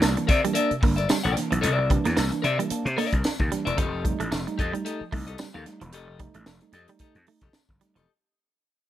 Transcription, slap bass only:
0, 0, Header, 1, 3, 480
1, 0, Start_track
1, 0, Tempo, 537153
1, 1459, Time_signature, 4, 2, 24, 8
1, 7949, End_track
2, 0, Start_track
2, 0, Title_t, "Slap bass"
2, 0, Program_c, 0, 36
2, 25, Note_on_c, 0, 36, 95
2, 132, Note_off_c, 0, 36, 0
2, 257, Note_on_c, 0, 48, 86
2, 368, Note_off_c, 0, 48, 0
2, 741, Note_on_c, 0, 31, 81
2, 937, Note_off_c, 0, 31, 0
2, 1113, Note_on_c, 0, 34, 87
2, 1200, Note_off_c, 0, 34, 0
2, 1356, Note_on_c, 0, 35, 81
2, 1441, Note_off_c, 0, 35, 0
2, 1462, Note_on_c, 0, 36, 113
2, 1768, Note_off_c, 0, 36, 0
2, 1838, Note_on_c, 0, 40, 77
2, 1923, Note_off_c, 0, 40, 0
2, 1946, Note_on_c, 0, 36, 96
2, 2053, Note_off_c, 0, 36, 0
2, 2182, Note_on_c, 0, 48, 83
2, 2291, Note_off_c, 0, 48, 0
2, 2550, Note_on_c, 0, 48, 104
2, 2638, Note_off_c, 0, 48, 0
2, 2794, Note_on_c, 0, 36, 82
2, 2881, Note_off_c, 0, 36, 0
2, 3037, Note_on_c, 0, 39, 96
2, 3122, Note_off_c, 0, 39, 0
2, 3274, Note_on_c, 0, 28, 80
2, 3361, Note_off_c, 0, 28, 0
2, 3376, Note_on_c, 0, 29, 108
2, 3685, Note_off_c, 0, 29, 0
2, 3752, Note_on_c, 0, 33, 68
2, 3839, Note_off_c, 0, 33, 0
2, 3858, Note_on_c, 0, 29, 84
2, 3969, Note_off_c, 0, 29, 0
2, 4104, Note_on_c, 0, 41, 79
2, 4213, Note_off_c, 0, 41, 0
2, 4581, Note_on_c, 0, 36, 87
2, 4777, Note_off_c, 0, 36, 0
2, 4956, Note_on_c, 0, 39, 84
2, 5042, Note_off_c, 0, 39, 0
2, 5192, Note_on_c, 0, 28, 90
2, 5300, Note_off_c, 0, 28, 0
2, 5300, Note_on_c, 0, 29, 110
2, 5607, Note_off_c, 0, 29, 0
2, 5673, Note_on_c, 0, 33, 78
2, 5760, Note_off_c, 0, 33, 0
2, 5774, Note_on_c, 0, 29, 86
2, 5886, Note_off_c, 0, 29, 0
2, 6010, Note_on_c, 0, 41, 89
2, 6123, Note_off_c, 0, 41, 0
2, 6389, Note_on_c, 0, 41, 102
2, 6477, Note_off_c, 0, 41, 0
2, 6629, Note_on_c, 0, 29, 89
2, 6717, Note_off_c, 0, 29, 0
2, 6875, Note_on_c, 0, 31, 86
2, 6960, Note_off_c, 0, 31, 0
2, 7109, Note_on_c, 0, 28, 86
2, 7196, Note_off_c, 0, 28, 0
2, 7949, End_track
3, 0, Start_track
3, 0, Title_t, "Muted slap bass strokes"
3, 633, Note_on_c, 9, 29, 48
3, 723, Note_off_c, 9, 29, 0
3, 2421, Note_on_c, 9, 29, 47
3, 2511, Note_off_c, 9, 29, 0
3, 4476, Note_on_c, 9, 29, 50
3, 4565, Note_off_c, 9, 29, 0
3, 6255, Note_on_c, 9, 29, 44
3, 6345, Note_off_c, 9, 29, 0
3, 6731, Note_on_c, 9, 29, 52
3, 6820, Note_off_c, 9, 29, 0
3, 7949, End_track
0, 0, End_of_file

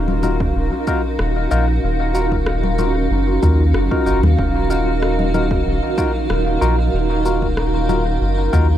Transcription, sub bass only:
0, 0, Header, 1, 2, 480
1, 0, Start_track
1, 0, Key_signature, -6, "minor"
1, 0, Tempo, 638298
1, 1377, Time_signature, 4, 2, 24, 8
1, 6601, End_track
2, 0, Start_track
2, 0, Title_t, "Sub bass"
2, 0, Program_c, 0, 38
2, 0, Note_on_c, 0, 27, 91
2, 394, Note_off_c, 0, 27, 0
2, 414, Note_on_c, 0, 27, 90
2, 526, Note_off_c, 0, 27, 0
2, 895, Note_on_c, 0, 27, 86
2, 1108, Note_off_c, 0, 27, 0
2, 1137, Note_on_c, 0, 34, 78
2, 1350, Note_off_c, 0, 34, 0
2, 1378, Note_on_c, 0, 27, 96
2, 2315, Note_off_c, 0, 27, 0
2, 2334, Note_on_c, 0, 30, 103
2, 2548, Note_off_c, 0, 30, 0
2, 2577, Note_on_c, 0, 39, 95
2, 2809, Note_off_c, 0, 39, 0
2, 2813, Note_on_c, 0, 30, 88
2, 2926, Note_off_c, 0, 30, 0
2, 3051, Note_on_c, 0, 30, 84
2, 3165, Note_off_c, 0, 30, 0
2, 3178, Note_on_c, 0, 39, 96
2, 3281, Note_off_c, 0, 39, 0
2, 3296, Note_on_c, 0, 27, 97
2, 4235, Note_off_c, 0, 27, 0
2, 4251, Note_on_c, 0, 27, 94
2, 4365, Note_off_c, 0, 27, 0
2, 4734, Note_on_c, 0, 27, 87
2, 4948, Note_off_c, 0, 27, 0
2, 4972, Note_on_c, 0, 34, 74
2, 5187, Note_off_c, 0, 34, 0
2, 5211, Note_on_c, 0, 27, 97
2, 6152, Note_off_c, 0, 27, 0
2, 6172, Note_on_c, 0, 30, 100
2, 6387, Note_off_c, 0, 30, 0
2, 6415, Note_on_c, 0, 39, 95
2, 6601, Note_off_c, 0, 39, 0
2, 6601, End_track
0, 0, End_of_file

